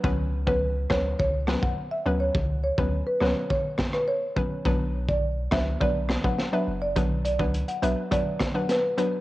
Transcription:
<<
  \new Staff \with { instrumentName = "Marimba" } { \time 4/4 \key b \minor \tempo 4 = 104 r8. b'16 r8 cis''16 r16 cis''16 r8 fis''16 r16 e''16 r16 cis''16 | r8 cis''16 r8 b'16 cis''16 r16 cis''16 r8 b'16 cis''8. r16 | r8. d''16 r8 e''16 r16 d''16 r8 fis''16 r16 e''16 r16 d''16 | r8 d''16 r8 fis''16 e''16 r16 d''16 r8 fis''16 b'8. r16 | }
  \new Staff \with { instrumentName = "Synth pluck" } { \time 4/4 \key b \minor <fis b cis' b'>8. <fis b cis' b'>8. <fis b cis' b'>8 r8 <fis b cis' b'>16 r8. <fis b cis' b'>16 r16 | r8. <fis b cis' b'>16 r8 <fis b cis' b'>16 r4. r16 <fis b cis' b'>16 r16 | <fis b d' b'>4 r8 <fis b d' b'>16 r16 <fis b d' b'>8. <fis b d' b'>16 r16 <fis b d' b'>16 r8 | <fis b d' b'>16 r8 <fis b d' b'>16 r8 <fis b d' b'>16 r16 <fis b d' b'>8. <fis b d' b'>16 r8 <fis b d' b'>16 r16 | }
  \new Staff \with { instrumentName = "Sub bass" } { \clef bass \time 4/4 \key b \minor cis,4. d,8 cis,8. b,,16 r8 d,8 | cis,8. d,8 r16 cis,16 r2 r16 | b,,4. cis,8 b,,8. a,,16 r8 fis,,8 | b,,8. cis,8 r16 b,,16 r2 r16 | }
  \new DrumStaff \with { instrumentName = "Drums" } \drummode { \time 4/4 bd8. bd16 r8 <bd ss sn>8 bd8 <ss sn>16 bd16 r4 | bd8. bd16 r8 <ss sn>8 bd8 <bd ss sn>16 ss16 r8 bd8 | bd8. bd16 r8 <bd ss sn>8 bd8 <ss sn>16 bd16 sn4 | <hh bd>8 hh16 bd16 hh16 hh16 hh8 <hh bd>8 <hh bd ss sn>8 <hh sn>8 hh8 | }
>>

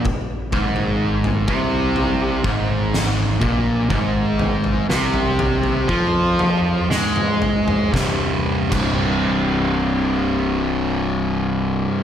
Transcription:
<<
  \new Staff \with { instrumentName = "Distorted electric guitar" } { \clef bass \time 4/4 \key aes \lydian \tempo 4 = 60 r8 aes,4 c4 aes,4 bes,8 | aes,4 c4 f4 aes4 | <c, g, c>16 r8 <c, g, c>2.~ <c, g, c>16 | }
  \new Staff \with { instrumentName = "Fingered electric bass" } { \clef bass \time 4/4 \key aes \lydian r8 aes,,4 c,4 aes,,4 bes,,8 | aes,,4 c,4 f,4 aes,4 | c,,16 r8 c,,2.~ c,,16 | }
  \new DrumStaff \with { instrumentName = "Drums" } \drummode { \time 4/4 <bd tomfh>8 <bd tomfh>16 tomfh16 r16 tomfh16 <bd tomfh>8 tomfh8 bd8 sn8 <bd tomfh>8 | <bd tomfh>8 tomfh16 tomfh16 sn16 tomfh16 tomfh16 tomfh16 <bd tomfh>8 toml8 sn16 toml16 tomfh16 toml16 | <bd sn>8. <cymc bd>16 r4 r4 r4 | }
>>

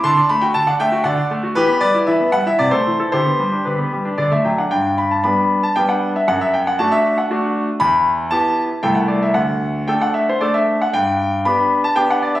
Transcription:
<<
  \new Staff \with { instrumentName = "Grand piano" } { \time 3/4 \key g \major \tempo 4 = 117 <a'' c'''>8 b''16 g''16 a''16 fis''16 <e'' g''>8 <d'' fis''>8 r8 | <g' b'>8 <b' d''>8 <b' e''>8 fis''16 e''16 d''16 <a' c''>8 a'16 | <g' c''>4 <g' b'>4 d''16 e''16 g''16 fis''16 | g''8 b''16 a''16 b''8. a''16 g''16 fis''8 e''16 |
fis''16 e''16 g''16 fis''16 a''16 e''8 fis''16 r4 | b''4 a''4 g''16 fis''16 d''16 e''16 | fis''4 g''16 fis''16 e''16 c''16 d''16 e''8 fis''16 | g''4 b''8. a''16 g''16 fis''16 d''16 e''16 | }
  \new Staff \with { instrumentName = "Grand piano" } { \time 3/4 \key g \major d16 d'16 a16 fis'16 d16 d'16 a16 fis'16 d16 d'16 a16 fis'16 | e16 b16 g16 e'16 e16 b16 g16 e'16 c16 a16 e16 e'16 | d16 b16 g16 d'16 d16 b16 g16 d'16 d16 a16 fis16 d'16 | g,4 <g b d'>4 <g b d'>4 |
fis,4 <a d' fis'>4 <a d' fis'>4 | e,4 <b e' g'>4 <c, a e' a'>4 | d,4 <a d' a'>4 <a d' a'>4 | g,4 <b d' g'>4 <b d' g'>4 | }
>>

